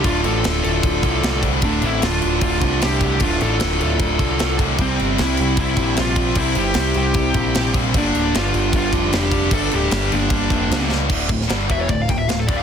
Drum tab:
CC |x-x-x-x-x-x-x-x-|x-x-x-x-x-x-x-x-|x-x-x-x-x-x-x-x-|x-x-x-x-x-x-x-x-|
RD |----------------|----------------|----------------|----------------|
SD |----o-------o---|----o-------o---|----o-------o---|----o-------o---|
BD |o-------o-o---o-|o-------o-o---o-|o-------o-o---o-|o-------o-o---o-|

CC |x-x-x-x-x-x-x-x-|x-x-x-x-x-x-x-x-|x-x-x-x-x-x-x---|x---------------|
RD |----------------|----------------|----------------|--x-x-x-x-x-x-x-|
SD |----o-------o---|----o-------o---|----o-------o-o-|---oo-------o---|
BD |o-------o-o---o-|o-------o-o---o-|o-------o-o-----|o-o---o-o-o---o-|